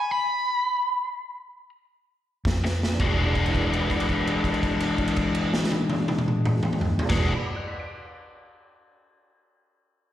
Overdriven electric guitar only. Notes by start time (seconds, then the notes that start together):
2.64 muted overdriven electric guitar stroke
3.01 E3 G#3 D4 F#4
7.09 E3 G#3 D4
7.13 F#4